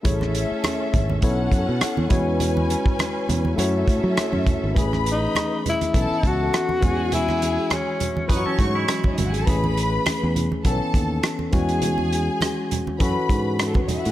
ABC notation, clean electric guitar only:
X:1
M:4/4
L:1/16
Q:"Swing 16ths" 1/4=102
K:A
V:1 name="Clean electric guitar"
z16 | z16 | z16 | z8 [^DB] [CA] [A,F] [G,E]4- [G,E] |
z16 | z16 |]